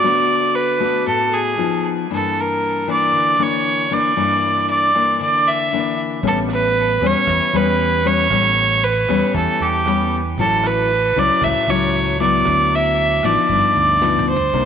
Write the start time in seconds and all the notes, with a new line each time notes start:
Already playing: D5
0.03 D3 A3 B3 F#4
0.55 B4
0.80 A3 B3 F#4
1.06 A2 A4
1.34 G#4
1.57 F3 B3 D#4
2.10 G2 E3 A#3 D4
2.14 A4
2.40 A#4
2.88 E3 A#3 D4 D5
3.13 D3
3.39 E3 A#3 D4 C#5
3.91 E3 A#3 D4 D5
4.16 G2 E3 A#3 D4
4.70 D5
4.95 E3 A#3 D4
5.20 D3 D5
5.48 E5
5.72 E3 A#3 D4
6.23 A1 A2 G3 B3 C#4, kick, closed hi-hat
6.28 A4
6.49 cross-stick, closed hi-hat
6.53 B4
6.75 closed hi-hat
7.01 E2 G3 B3 C#4, closed hi-hat
7.06 C#5
7.27 E2 E3, kick, cross-stick, closed hi-hat
7.53 E2 G3 B3 C#4 B4, closed hi-hat
7.79 closed hi-hat
8.05 G3 B3 C#4 C#5, closed hi-hat
8.30 A1 A2 G3 B3 C#4, kick, cross-stick, closed hi-hat
8.56 closed hi-hat
8.83 B4, closed hi-hat
9.09 E2 G3 B3 C#4, cross-stick, closed hi-hat
9.34 E2 E3 A4, kick, closed hi-hat
9.60 E2 G4, closed hi-hat
9.86 G3 B3 C#4, cross-stick, closed hi-hat
10.12 closed hi-hat
10.38 A1 A2 F#3 C#4 E4 A4, kick, closed hi-hat
10.64 B4, cross-stick, closed hi-hat
10.89 closed hi-hat
11.15 C#2 F#3 C#4 E4 D5, closed hi-hat
11.41 C#2 A2 E5, kick, cross-stick, closed hi-hat
11.67 C#2 F#3 C#4 E4 C#5
11.93 closed hi-hat
12.20 F#3 B3 E4 D5, closed hi-hat
12.45 D2 D3, kick, cross-stick, closed hi-hat
12.71 E5, closed hi-hat
12.97 closed hi-hat
13.23 A1 F3 B3 D#4 D5, cross-stick
13.49 G1 G2, kick, closed hi-hat
13.76 D2, closed hi-hat
14.01 F3 B3 D#4, snare
14.19 mid tom
14.29 C5
14.36 floor tom
14.53 C2 C3 D#3 A#3 D4, kick, closed hi-hat